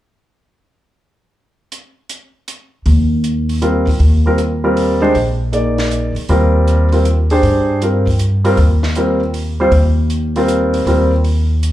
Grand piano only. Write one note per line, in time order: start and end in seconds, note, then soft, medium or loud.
3.62 3.85 G3 soft
3.62 3.85 C4 soft
3.62 3.85 F4 soft
3.62 3.85 A#4 medium
4.26 4.37 G3 medium
4.26 4.38 C4 soft
4.26 4.38 F4 soft
4.26 4.38 A#4 medium
4.64 5.00 G3 medium
4.64 5.00 C4 soft
4.64 5.00 F4 soft
4.64 5.00 A#4 medium
5.02 5.13 G#3 medium
5.02 5.13 D4 medium
5.02 5.14 G4 medium
5.02 5.14 C5 medium
5.52 6.11 A#3 soft
5.52 6.11 D#4 soft
5.52 6.12 G#4 soft
5.52 6.12 D5 soft
6.29 6.88 G3 medium
6.29 6.88 C4 soft
6.29 6.88 F4 soft
6.29 6.88 A#4 medium
6.92 7.04 G3 soft
6.92 7.04 C4 soft
6.92 7.04 F4 soft
6.92 7.05 A#4 soft
7.31 7.80 D4 medium
7.31 7.80 G4 medium
7.31 7.79 G#4 medium
7.31 7.80 C5 medium
7.82 8.05 G3 soft
7.82 8.05 C4 soft
7.82 8.05 F4 soft
7.82 8.05 A#4 soft
8.44 8.56 G3 medium
8.44 8.57 C4 medium
8.44 8.57 F4 medium
8.44 8.57 A#4 medium
8.96 9.19 G3 soft
8.96 9.19 C4 soft
8.96 9.19 F4 soft
8.96 9.20 A#4 medium
9.60 9.71 G3 medium
9.60 9.71 C4 medium
9.60 9.72 F4 medium
9.60 9.72 C5 medium
10.36 10.84 G3 soft
10.36 10.85 C4 medium
10.36 10.85 F4 soft
10.36 10.85 A#4 medium
10.87 11.10 G3 soft
10.87 11.10 C4 soft
10.87 11.10 F4 soft
10.87 11.10 A#4 medium